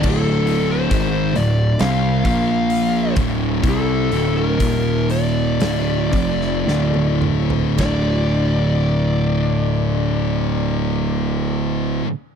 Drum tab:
CC |x---------------|----------------|----------------|
RD |----------------|----------------|b---------------|
HH |--o-o-o-o-o-o-o-|o-o-o-o-o-o-----|----------------|
SD |--------o-------|--------o--oo---|o---------------|
T1 |----------------|-------------o--|----------------|
T2 |----------------|--------------o-|----------------|
FT |----------------|---------------o|----------------|
BD |o---o-----o---o-|o---o-----o-----|o---------------|